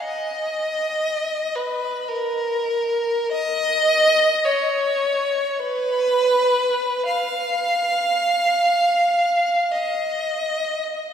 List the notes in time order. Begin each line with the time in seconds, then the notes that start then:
0.03 D#5
1.55 B4
2.08 A#4
3.32 D#5
4.44 C#5
5.59 B4
7.06 F5
9.71 D#5